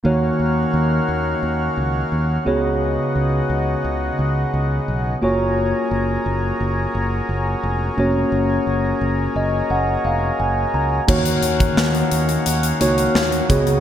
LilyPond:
<<
  \new Staff \with { instrumentName = "Tine electric piano" } { \time 4/4 \key dis \minor \tempo 4 = 87 << { dis4. r2 cis8~ | cis4 r2. | r1 | r4. dis''8 fis''8 eis''8 gis''8 ais''8 |
dis4. r2 cis8 | } \\ { <ais dis' fis' cis''>2.~ <ais dis' fis' cis''>8 <b fis' gis' cis''>8~ | <b fis' gis' cis''>2.~ <b fis' gis' cis''>8 <ais eis' fis' cis''>8~ | <ais eis' fis' cis''>2.~ <ais eis' fis' cis''>8 <ais cis' fis' cis''>8~ | <ais cis' fis' cis''>2.~ <ais cis' fis' cis''>8 r8 |
<ais dis' fis' cis''>4. r4 <ais dis' fis' cis''>4 <b fis' gis' cis''>8 | } >> }
  \new Staff \with { instrumentName = "Accordion" } { \time 4/4 \key dis \minor fis'1~ | fis'2.~ fis'8 ais'8~ | ais'1~ | ais'1 |
fis'1 | }
  \new Staff \with { instrumentName = "Accordion" } { \time 4/4 \key dis \minor <dis ais cis' eis''>2.~ <dis ais cis' eis''>8 <cis gis b dis'>8~ | <cis gis b dis'>2.~ <cis gis b dis'>8 <fis cis' gis'>8~ | <fis cis' gis'>1~ | <fis cis' gis'>1 |
<dis ais cis' eis''>2.~ <dis ais cis' eis''>8 <cis gis b dis'>8 | }
  \new Staff \with { instrumentName = "Fingered electric bass" } { \clef bass \time 4/4 \key dis \minor dis,8 dis,8 dis,8 dis,8 dis,8 cis,8 dis,8 cis,8~ | cis,8 cis,8 cis,8 cis,8 cis,8 cis,8 b,,8 fis,,8~ | fis,,8 fis,,8 fis,,8 fis,,8 fis,,8 fis,,8 eis,,8 eis,,8 | fis,,8 fis,,8 fis,,8 fis,,8 fis,,8 eis,,8 fis,,8 cis,8 |
dis,8 dis,8 dis,8 dis,8 dis,8 cis,8 dis,8 cis,8 | }
  \new DrumStaff \with { instrumentName = "Drums" } \drummode { \time 4/4 r4 r4 r4 r4 | r4 r4 r4 r4 | r4 r4 r4 r4 | r4 r4 r4 r4 |
<cymc bd>16 hh16 hh16 <hh bd>16 sn16 hh16 hh16 hh16 hh16 hh16 hh16 hh16 sn16 hh16 <hh bd>16 hh16 | }
>>